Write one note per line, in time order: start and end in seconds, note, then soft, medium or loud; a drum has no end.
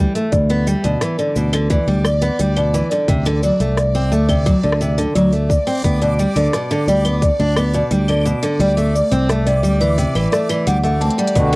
0.00 0.14 G3 medium
0.15 0.32 A3 medium
0.15 open hi-hat soft
0.15 shaker soft
0.32 0.74 D2 medium
0.32 0.49 D5 medium
0.32 11.34 D5 medium
0.32 11.35 D6 medium
0.32 kick loud
0.32 open hi-hat soft
0.32 shaker soft
0.49 0.66 B3 medium
0.49 open hi-hat soft
0.67 0.83 G3 medium
0.67 shaker medium
0.84 0.95 D2 medium
0.84 1.00 B2 medium
0.84 1.01 D5 medium
0.84 open hi-hat soft
0.84 shaker soft
1.01 1.18 E3 medium
1.01 cross-stick medium
1.01 open hi-hat medium
1.01 shaker soft
1.18 1.35 D3 medium
1.18 1.35 D5 medium
1.18 shaker soft
1.36 1.77 D2 medium
1.36 1.52 B2 medium
1.36 shaker medium
1.53 1.69 D3 medium
1.53 open hi-hat soft
1.53 claves medium
1.53 shaker soft
1.70 1.86 E3 medium
1.70 1.87 D5 medium
1.70 kick loud
1.70 open hi-hat medium
1.70 shaker soft
1.87 2.29 D2 medium
1.87 2.04 G3 medium
2.05 2.21 D5 medium
2.05 cross-stick medium
2.05 claves medium
2.05 shaker medium
2.22 2.38 B3 medium
2.22 open hi-hat soft
2.22 shaker soft
2.39 2.81 D2 medium
2.39 2.56 G3 medium
2.39 open hi-hat medium
2.39 shaker soft
2.56 2.72 B2 medium
2.56 2.73 D5 medium
2.56 open hi-hat soft
2.56 claves medium
2.74 2.90 E3 medium
2.74 shaker medium
2.90 3.08 D3 medium
2.90 3.07 D5 medium
2.90 open hi-hat soft
2.90 shaker soft
3.08 3.50 D2 medium
3.08 3.24 C3 medium
3.08 kick loud
3.08 open hi-hat medium
3.08 shaker soft
3.25 3.41 D3 loud
3.25 open hi-hat soft
3.43 3.59 F#3 medium
3.43 3.59 D5 medium
3.43 shaker medium
3.60 4.12 C2 medium
3.60 3.76 A3 medium
3.60 open hi-hat soft
3.60 shaker soft
3.77 3.94 D5 medium
3.77 cross-stick medium
3.77 open hi-hat medium
3.77 shaker soft
3.95 4.11 C4 medium
3.95 shaker soft
4.12 4.53 D2 medium
4.12 4.28 A3 medium
4.12 shaker medium
4.28 4.44 C3 medium
4.28 4.45 D5 medium
4.28 kick medium
4.28 open hi-hat soft
4.28 claves medium
4.28 shaker soft
4.46 4.63 F#3 medium
4.46 kick loud
4.46 open hi-hat medium
4.46 shaker soft
4.63 5.05 D2 medium
4.63 4.80 D3 medium
4.63 4.80 D5 medium
4.72 cross-stick medium
4.81 4.96 C3 medium
4.81 shaker medium
4.98 5.14 D3 medium
4.98 open hi-hat soft
4.98 shaker soft
5.15 5.57 D2 medium
5.15 5.31 F#3 medium
5.15 5.32 D5 medium
5.15 open hi-hat medium
5.15 shaker soft
5.33 5.49 A3 medium
5.33 open hi-hat soft
5.49 5.66 D5 medium
5.49 kick loud
5.49 shaker medium
5.67 5.83 C4 loud
5.67 open hi-hat soft
5.67 shaker soft
5.70 open hi-hat soft
5.72 open hi-hat soft
5.75 open hi-hat soft
5.77 open hi-hat soft
5.79 open hi-hat soft
5.82 6.26 D2 medium
5.82 6.01 B3 medium
5.82 kick loud
5.82 open hi-hat soft
5.84 open hi-hat medium
5.84 shaker soft
6.01 6.17 B2 medium
6.01 6.18 D5 medium
6.01 open hi-hat soft
6.19 6.35 G3 medium
6.19 shaker medium
6.36 6.47 D2 medium
6.36 6.52 D3 medium
6.36 6.52 D5 medium
6.36 open hi-hat soft
6.36 shaker soft
6.53 6.69 B2 medium
6.53 cross-stick medium
6.53 open hi-hat medium
6.53 shaker soft
6.71 6.86 D3 medium
6.71 shaker soft
6.87 7.29 D2 medium
6.87 7.03 G3 medium
6.87 7.04 D5 medium
6.87 shaker medium
7.05 7.21 B3 medium
7.05 open hi-hat soft
7.05 claves medium
7.05 shaker soft
7.22 7.39 D5 medium
7.22 kick loud
7.22 open hi-hat medium
7.22 shaker soft
7.39 7.81 D2 medium
7.39 7.56 D4 medium
7.57 7.74 B3 medium
7.57 cross-stick medium
7.57 claves medium
7.57 shaker medium
7.74 7.90 B2 medium
7.74 7.91 D5 medium
7.74 open hi-hat soft
7.74 shaker soft
7.91 8.32 D2 medium
7.91 8.07 G3 medium
7.91 open hi-hat medium
7.91 shaker soft
8.08 8.25 D3 medium
8.08 8.25 D5 medium
8.08 open hi-hat soft
8.08 claves medium
8.12 claves soft
8.17 claves soft
8.21 claves soft
8.26 8.41 B2 medium
8.26 shaker medium
8.43 8.58 D3 loud
8.43 open hi-hat soft
8.43 shaker soft
8.59 9.01 D2 medium
8.59 8.75 G3 medium
8.59 8.77 D5 medium
8.59 open hi-hat medium
8.77 8.94 A3 medium
8.77 open hi-hat soft
8.77 shaker soft
8.95 9.11 D5 medium
8.95 shaker medium
9.12 9.63 C2 medium
9.12 9.28 C4 loud
9.12 open hi-hat soft
9.12 shaker soft
9.29 9.46 A3 medium
9.29 cross-stick medium
9.29 open hi-hat medium
9.29 shaker soft
9.46 9.62 C3 medium
9.46 9.63 D5 medium
9.46 open hi-hat soft
9.46 shaker soft
9.63 10.05 D2 medium
9.63 9.80 G3 medium
9.63 shaker medium
9.80 9.97 E3 medium
9.80 9.97 D5 medium
9.80 open hi-hat soft
9.80 claves medium
9.80 shaker soft
9.98 10.14 C3 medium
9.98 open hi-hat medium
9.98 shaker soft
10.15 10.26 A1 medium
10.15 10.31 E3 medium
10.15 open hi-hat soft
10.15 claves medium
10.32 10.48 A3 medium
10.32 10.49 D5 medium
10.32 cross-stick medium
10.32 shaker medium
10.49 10.65 E3 loud
10.49 open hi-hat soft
10.49 claves medium
10.49 shaker soft
10.67 11.09 D2 medium
10.67 10.77 G3 loud
10.67 10.83 F#5 medium
10.67 open hi-hat medium
10.67 shaker soft
10.84 10.99 A3 medium
10.84 11.01 F#5 medium
10.84 open hi-hat soft
11.01 11.17 C4 medium
11.01 11.18 A5 medium
11.01 closed hi-hat medium
11.11 closed hi-hat medium
11.18 11.34 G3 medium
11.18 11.34 D5 medium
11.18 closed hi-hat medium
11.28 closed hi-hat medium
11.35 11.56 D2 medium
11.35 11.51 B2 medium
11.35 11.56 D3 medium
11.35 11.56 D4 medium
11.35 11.56 F#4 medium
11.35 11.56 G4 medium
11.35 11.56 D5 medium
11.35 11.52 D5 medium
11.35 11.56 D6 medium
11.35 kick loud
11.35 open hi-hat medium
11.35 shaker soft
11.53 11.56 D3 loud